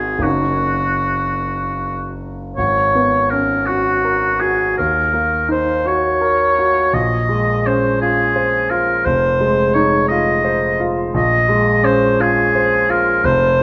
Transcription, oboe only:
Already playing: G#4
0.23 F#4
2.57 C#5
3.30 A#4
3.66 F#4
4.40 G#4
4.77 A#4
5.51 C5
5.87 C#5
6.94 D#5
7.66 C5
8.01 G#4
8.70 A#4
9.05 C5
9.74 C#5
10.08 D#5
11.15 D#5
11.84 C5
12.21 G#4
12.90 A#4
13.25 C5

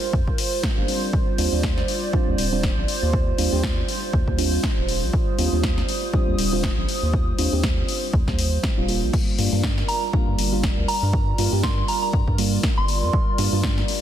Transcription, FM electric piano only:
0.77 G3 A#3 D4 F4
0.88 G3 C4 D4 F4
1.38 G3 C4 D4 F4
1.52 G3 C4 D4 F4
2.13 G3 C4 D4 F4
2.52 G3 C4 D4 F4
3.38 G3 C4 D4 F4
3.52 G3 C4 D4 G4
4.38 G3 C4 D4 F4
5.38 G3 C4 D4 F4
5.53 G3 C4 D4 F4
6.13 G3 C4 D4 F4
6.53 G3 C4 D4 F4
7.38 G3 C4 D4 F4
7.53 G3 C4 D4 G4
8.78 G3 C4 D4 F4
8.88 G3 A#3 D4 F4
9.38 G3 A#3 D4 F4
9.53 G3 A#3 D4 F4
10.13 G3 A#3 D4 F4
10.52 G3 A#3 D4 F4
11.38 G3 A#3 D4 F4
11.52 G3 A#3 D4 G4
12.38 G3 A#3 D4 F4
13.38 G3 A#3 D4 F4
13.53 G3 A#3 D4 F4

